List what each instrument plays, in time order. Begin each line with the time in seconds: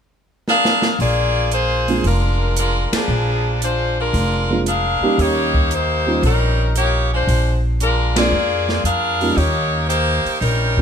0.48 saxophone section D4 G#4 A#4 F5, snare
0.65 snare
0.82 snare
0.99 upright bass A#1, saxophone section A#3 F4 G#4 D5, kick, open hi-hat
1.51 saxophone section A#3 F4 G#4 C5, closed hi-hat
1.88 grand piano G#3 A#3 C4 D4 F4, open hi-hat
2.04 upright bass F1, saxophone section G#3 D4 F4 A#4, kick, open hi-hat
2.56 saxophone section G#3 D4 F4 A#4, closed hi-hat
2.92 saxophone section F3 A#3 D4 G#4, muted upright bass stroke, snare, ride
3.08 upright bass A#1
3.62 saxophone section G#3 D4 F4 C5, closed hi-hat
3.99 saxophone section G#3 D4 F4 A#4
4.13 upright bass F1, kick, open hi-hat
4.50 grand piano G#3 A#3 C4 D4 F4
4.66 saxophone section D4 G#4 A#4 F5, closed hi-hat
5.01 grand piano G3 A#3 C#4 D#4 G4, muted upright bass stroke
5.18 upright bass D#2, saxophone section A#3 D#4 G4 C#5, kick, open hi-hat
5.54 kick
5.71 saxophone section A#3 D#4 G4 C5, closed hi-hat
6.06 grand piano G3 A#3 C#4 D#4 F4
6.23 upright bass A#1, saxophone section G3 C#4 D#4 A#4, kick, open hi-hat
6.75 saxophone section A#3 D#4 G4 C#5, closed hi-hat
7.14 saxophone section G#3 D4 F4 C5
7.27 upright bass A#1, kick, open hi-hat
7.80 saxophone section G#3 D4 F4 A#4, closed hi-hat
8.16 grand piano G#3 A#3 C4 D4 F4, saxophone section A#3 F4 G#4 D5, snare, ride
8.31 upright bass F2
8.69 snare
8.84 upright bass F2, saxophone section D4 G#4 A#4 F5, closed hi-hat
9.21 grand piano G3 A#3 C#4 D#4 F4, open hi-hat
9.36 upright bass D#2, saxophone section A#3 D#4 G4 C#5, kick, open hi-hat
9.88 saxophone section A#3 D#4 G4 C5, closed hi-hat
10.25 muted upright bass stroke, open hi-hat
10.41 upright bass A#1, saxophone section G3 C#4 D#4 A#4, kick, open hi-hat
10.77 grand piano G3 A#3 C#4, kick